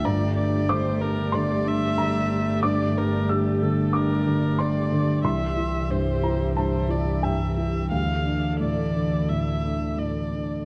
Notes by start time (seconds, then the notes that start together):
0.04 G1 G2 G3 A3 G4 D5 A#5
0.37 D4 D5
0.69 D3 C5 D6
1.01 D4 A#4
1.32 D3 D5 C6
1.66 D4 E5
1.97 D3 A#5
2.30 D4
2.63 G2 D5 D6
2.96 D3 A#4
3.29 D4 G4 E6
3.62 D3 A4
3.93 D4 A#4 D6
4.26 D3
4.59 D4 D5 C6
4.92 D3
5.24 C2 E3 G3 G4 E5 C6
5.57 E4
5.90 G2 C5
6.23 E4 A#5
6.56 G2 C5 A5
6.88 E4 D5
7.23 G2 E5 G5
7.57 E4 E5
7.91 D2 E3 A4 D5 F5
8.25 D4
8.60 A2 D5
8.94 D4
9.29 A2 E5
9.63 D4
9.97 A2 D5
10.32 D4